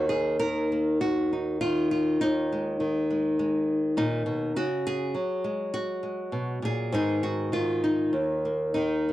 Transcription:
0, 0, Header, 1, 2, 480
1, 0, Start_track
1, 0, Key_signature, -6, "minor"
1, 0, Tempo, 600601
1, 1762, Time_signature, 4, 2, 24, 8
1, 2238, Tempo, 587659
1, 5118, Tempo, 602410
1, 6558, Tempo, 626959
1, 7319, End_track
2, 0, Start_track
2, 0, Title_t, "Nylon-string guitar"
2, 0, Program_c, 0, 24
2, 0, Note_on_c, 0, 39, 73
2, 0, Note_on_c, 0, 51, 47
2, 0, Note_on_c, 0, 58, 49
2, 0, Note_on_c, 0, 63, 46
2, 73, Note_on_c, 0, 68, 77
2, 312, Note_off_c, 0, 68, 0
2, 315, Note_on_c, 0, 70, 99
2, 325, Note_off_c, 0, 51, 0
2, 328, Note_on_c, 0, 51, 57
2, 572, Note_off_c, 0, 58, 0
2, 575, Note_on_c, 0, 58, 42
2, 802, Note_off_c, 0, 70, 0
2, 806, Note_on_c, 0, 66, 83
2, 1051, Note_off_c, 0, 63, 0
2, 1060, Note_on_c, 0, 63, 41
2, 1283, Note_off_c, 0, 66, 0
2, 1285, Note_off_c, 0, 51, 0
2, 1286, Note_on_c, 0, 65, 90
2, 1294, Note_on_c, 0, 51, 64
2, 1518, Note_off_c, 0, 65, 0
2, 1528, Note_on_c, 0, 65, 75
2, 1738, Note_off_c, 0, 58, 0
2, 1740, Note_off_c, 0, 63, 0
2, 1761, Note_off_c, 0, 39, 0
2, 1766, Note_on_c, 0, 63, 99
2, 1770, Note_on_c, 0, 39, 66
2, 2017, Note_on_c, 0, 56, 49
2, 2228, Note_off_c, 0, 51, 0
2, 2238, Note_on_c, 0, 51, 59
2, 2239, Note_off_c, 0, 65, 0
2, 2477, Note_off_c, 0, 56, 0
2, 2487, Note_on_c, 0, 56, 47
2, 2712, Note_off_c, 0, 56, 0
2, 2722, Note_on_c, 0, 56, 46
2, 3188, Note_off_c, 0, 63, 0
2, 3193, Note_on_c, 0, 46, 67
2, 3198, Note_on_c, 0, 63, 85
2, 3426, Note_off_c, 0, 46, 0
2, 3429, Note_on_c, 0, 47, 62
2, 3669, Note_off_c, 0, 47, 0
2, 3670, Note_off_c, 0, 51, 0
2, 3673, Note_off_c, 0, 63, 0
2, 3674, Note_off_c, 0, 39, 0
2, 3677, Note_on_c, 0, 49, 73
2, 3680, Note_on_c, 0, 66, 99
2, 3925, Note_on_c, 0, 68, 94
2, 4152, Note_on_c, 0, 54, 58
2, 4153, Note_off_c, 0, 49, 0
2, 4387, Note_off_c, 0, 56, 0
2, 4392, Note_off_c, 0, 66, 0
2, 4397, Note_on_c, 0, 56, 50
2, 4636, Note_on_c, 0, 66, 93
2, 4865, Note_off_c, 0, 56, 0
2, 4875, Note_on_c, 0, 56, 42
2, 5114, Note_on_c, 0, 47, 57
2, 5125, Note_off_c, 0, 68, 0
2, 5351, Note_off_c, 0, 47, 0
2, 5355, Note_on_c, 0, 46, 56
2, 5376, Note_on_c, 0, 68, 77
2, 5594, Note_on_c, 0, 44, 80
2, 5596, Note_off_c, 0, 46, 0
2, 5598, Note_off_c, 0, 54, 0
2, 5599, Note_off_c, 0, 56, 0
2, 5599, Note_off_c, 0, 68, 0
2, 5601, Note_off_c, 0, 66, 0
2, 5601, Note_on_c, 0, 51, 47
2, 5605, Note_on_c, 0, 59, 52
2, 5611, Note_on_c, 0, 63, 52
2, 5611, Note_on_c, 0, 68, 93
2, 5836, Note_off_c, 0, 63, 0
2, 5839, Note_on_c, 0, 66, 76
2, 6061, Note_off_c, 0, 51, 0
2, 6070, Note_on_c, 0, 51, 55
2, 6075, Note_off_c, 0, 68, 0
2, 6078, Note_on_c, 0, 65, 78
2, 6315, Note_off_c, 0, 66, 0
2, 6322, Note_on_c, 0, 63, 61
2, 6527, Note_off_c, 0, 44, 0
2, 6532, Note_off_c, 0, 59, 0
2, 6553, Note_on_c, 0, 39, 62
2, 6559, Note_off_c, 0, 65, 0
2, 6801, Note_on_c, 0, 58, 39
2, 7014, Note_off_c, 0, 63, 0
2, 7024, Note_on_c, 0, 63, 80
2, 7029, Note_off_c, 0, 51, 0
2, 7039, Note_on_c, 0, 51, 56
2, 7279, Note_off_c, 0, 58, 0
2, 7288, Note_on_c, 0, 58, 42
2, 7319, Note_off_c, 0, 39, 0
2, 7319, Note_off_c, 0, 51, 0
2, 7319, Note_off_c, 0, 58, 0
2, 7319, Note_off_c, 0, 63, 0
2, 7319, End_track
0, 0, End_of_file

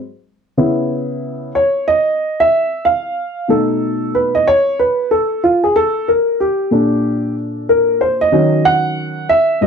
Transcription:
0, 0, Header, 1, 2, 480
1, 0, Start_track
1, 0, Tempo, 645161
1, 437, Time_signature, 4, 2, 24, 8
1, 7194, End_track
2, 0, Start_track
2, 0, Title_t, "Upright piano"
2, 0, Program_c, 0, 0
2, 427, Note_on_c, 0, 49, 60
2, 430, Note_on_c, 0, 59, 56
2, 433, Note_on_c, 0, 64, 69
2, 1122, Note_off_c, 0, 49, 0
2, 1124, Note_off_c, 0, 59, 0
2, 1125, Note_off_c, 0, 64, 0
2, 1155, Note_on_c, 0, 73, 85
2, 1379, Note_off_c, 0, 73, 0
2, 1396, Note_on_c, 0, 75, 96
2, 1787, Note_on_c, 0, 76, 97
2, 1798, Note_off_c, 0, 75, 0
2, 2121, Note_on_c, 0, 77, 90
2, 2127, Note_off_c, 0, 76, 0
2, 2591, Note_on_c, 0, 47, 48
2, 2594, Note_on_c, 0, 57, 45
2, 2600, Note_on_c, 0, 63, 59
2, 2605, Note_on_c, 0, 69, 82
2, 2613, Note_off_c, 0, 77, 0
2, 3086, Note_on_c, 0, 71, 79
2, 3095, Note_off_c, 0, 69, 0
2, 3235, Note_off_c, 0, 71, 0
2, 3235, Note_on_c, 0, 75, 89
2, 3284, Note_off_c, 0, 47, 0
2, 3286, Note_off_c, 0, 57, 0
2, 3288, Note_off_c, 0, 63, 0
2, 3315, Note_off_c, 0, 75, 0
2, 3329, Note_on_c, 0, 73, 102
2, 3547, Note_off_c, 0, 73, 0
2, 3567, Note_on_c, 0, 71, 85
2, 3802, Note_on_c, 0, 69, 87
2, 3809, Note_off_c, 0, 71, 0
2, 4023, Note_off_c, 0, 69, 0
2, 4045, Note_on_c, 0, 65, 78
2, 4194, Note_on_c, 0, 68, 80
2, 4195, Note_off_c, 0, 65, 0
2, 4274, Note_off_c, 0, 68, 0
2, 4284, Note_on_c, 0, 69, 99
2, 4526, Note_on_c, 0, 70, 71
2, 4527, Note_off_c, 0, 69, 0
2, 4765, Note_on_c, 0, 67, 80
2, 4768, Note_off_c, 0, 70, 0
2, 4992, Note_on_c, 0, 46, 54
2, 4996, Note_on_c, 0, 69, 52
2, 5001, Note_on_c, 0, 62, 56
2, 5451, Note_off_c, 0, 67, 0
2, 5723, Note_on_c, 0, 70, 82
2, 5959, Note_on_c, 0, 72, 83
2, 5967, Note_off_c, 0, 70, 0
2, 6110, Note_on_c, 0, 75, 91
2, 6112, Note_off_c, 0, 72, 0
2, 6165, Note_off_c, 0, 46, 0
2, 6167, Note_off_c, 0, 69, 0
2, 6169, Note_off_c, 0, 62, 0
2, 6190, Note_on_c, 0, 51, 61
2, 6195, Note_on_c, 0, 54, 61
2, 6200, Note_on_c, 0, 61, 63
2, 6438, Note_on_c, 0, 78, 104
2, 6448, Note_off_c, 0, 75, 0
2, 6883, Note_off_c, 0, 51, 0
2, 6886, Note_off_c, 0, 54, 0
2, 6888, Note_off_c, 0, 61, 0
2, 6915, Note_on_c, 0, 76, 99
2, 6931, Note_off_c, 0, 78, 0
2, 7151, Note_on_c, 0, 44, 52
2, 7155, Note_on_c, 0, 54, 47
2, 7157, Note_on_c, 0, 75, 92
2, 7161, Note_on_c, 0, 60, 63
2, 7163, Note_off_c, 0, 76, 0
2, 7194, Note_off_c, 0, 44, 0
2, 7194, Note_off_c, 0, 54, 0
2, 7194, Note_off_c, 0, 60, 0
2, 7194, Note_off_c, 0, 75, 0
2, 7194, End_track
0, 0, End_of_file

